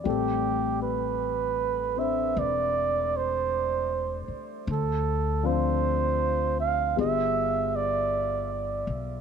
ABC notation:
X:1
M:4/4
L:1/8
Q:"Swing" 1/4=52
K:Am
V:1 name="Flugelhorn"
G B2 e d c2 z | A c2 f e d2 z |]
V:2 name="Grand piano"
[G,A,CA]3 [CDc]4- [CDc] | z [F,CDF]3 [G,B,F_A]4 |]
V:3 name="Upright bass" clef=bass
A,,,4 E,,,3 z | D,,4 G,,,3 B,,, |]